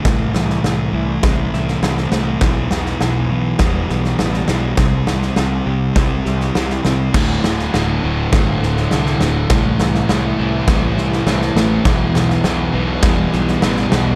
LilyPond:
<<
  \new Staff \with { instrumentName = "Clean electric guitar" } { \time 4/4 \key a \minor \tempo 4 = 102 a,8 e8 a8 e'8 c'8 e'8 c'8 a8 | e,8 b,8 e8 b8 g8 b8 g8 e8 | c8 g8 c'8 g'8 e'8 g'8 e'8 c'8 | d,8 a,8 d8 c'8 a8 c'8 a8 d8 |
a,8 e8 a8 e'8 c'8 e'8 c'8 a8 | e,8 b,8 e8 b8 g8 b8 g8 e8 | }
  \new Staff \with { instrumentName = "Distorted electric guitar" } { \clef bass \time 4/4 \key a \minor <a, e a>4 <a, e a>8 <a, e a>8 <a, e a>4 <a, e a>8 <a, e a>8 | <e, b, e>4 <e, b, e>8 <e, b, e>8 <e, b, e>4 <e, b, e>8 <e, b, e>8 | <c g c'>4 <c g c'>8 <c g c'>8 <c g c'>4 <c g c'>8 <c g c'>8 | <d, a, d>4 <d, a, d>8 <d, a, d>8 <d, a, d>4 <d, a, d>8 <d, a, d>8 |
<a, e a>4 <a, e a>8 <a, e a>8 <a, e a>4 <a, e a>8 <a, e a>8 | <e, b, e>4 <e, b, e>8 <e, b, e>8 <e, b, e>4 <e, b, e>8 <e, b, e>8 | }
  \new Staff \with { instrumentName = "Distorted electric guitar" } { \clef bass \time 4/4 \key a \minor r1 | r1 | r1 | <d, a, d>4 <d, a, d>8 <d, a, d>8 <d, a, d>4 <d, a, d>8 <d, a, d>8 |
<a, e a>4 <a, e a>8 <a, e a>8 <a, e a>4 <a, e a>8 <a, e a>8 | <e, b, e>4 <e, b, e>8 <e, b, e>8 <e, b, e>4 <e, b, e>8 <e, b, e>8 | }
  \new Staff \with { instrumentName = "Picked electric bass" } { \clef bass \time 4/4 \key a \minor c,8 c,8 c,8 c,8 c,8 c,8 c,8 c,8 | b,,8 b,,8 b,,8 b,,8 e,,8 b,,8 a,,8 b,,8 | c,8 c,8 c,8 c,8 c,8 c,8 c,8 c,8 | d,,8 d,,8 d,,8 d,,8 g,,8 d,,8 c,8 d,,8 |
c,8 c,8 c,8 c,8 c,8 c,8 c,8 a,,8 | b,,8 b,,8 b,,8 b,,8 e,,8 b,,8 a,,8 b,,8 | }
  \new DrumStaff \with { instrumentName = "Drums" } \drummode { \time 4/4 <bd sn>8 sn16 sn16 sn4 <bd sn>8 sn16 sn16 sn16 sn16 sn8 | <bd sn>8 sn16 sn16 sn4 <bd sn>8 sn16 sn16 sn16 sn16 sn8 | <bd sn>8 sn16 sn16 sn4 <bd sn>8 sn16 sn16 sn16 sn16 sn8 | <cymc bd sn>8 sn16 sn16 sn4 <bd sn>8 sn16 sn16 sn16 sn16 sn8 |
<bd sn>8 sn16 sn16 sn4 <bd sn>8 sn16 sn16 sn16 sn16 sn8 | <bd sn>8 sn16 sn16 sn4 <bd sn>8 sn16 sn16 sn16 sn16 sn8 | }
>>